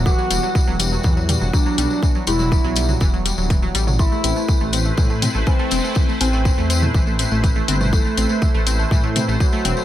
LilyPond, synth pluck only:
\new Staff \with { instrumentName = "Synth pluck" } { \clef bass \time 4/4 \key a \dorian \tempo 4 = 122 e16 fis16 g16 fis16 e16 fis16 g16 fis16 e16 fis16 g16 fis16 e16 fis16 g16 fis16 | e16 fis16 g16 fis16 e16 fis16 g16 fis16 e16 fis16 g16 fis16 e16 fis16 g16 fis16 | e16 a16 c'16 a16 e16 a16 c'16 a16 e16 a16 c'16 a16 e16 a16 c'16 a16 | e16 a16 c'16 a16 e16 a16 c'16 a16 e16 a16 c'16 a16 e16 a16 c'16 a16 |
e16 a16 c'16 a16 e16 a16 c'16 a16 e16 a16 c'16 a16 e16 a16 c'16 a16 | }